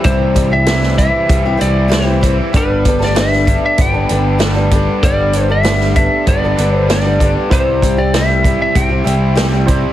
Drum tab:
HH |x-x-x-x-x-x-x-x-|x-x-x-x-x-x-x-x-|x-x-x-x-x-x-x-x-|x-x-x-x-x-x-x-x-|
SD |----oo------o---|---ooo------o---|----oo------o---|----o-------o---|
BD |o-o---o-o-----o-|o-o---o-o-----o-|o-----o-o-----o-|o-o---o-o-----o-|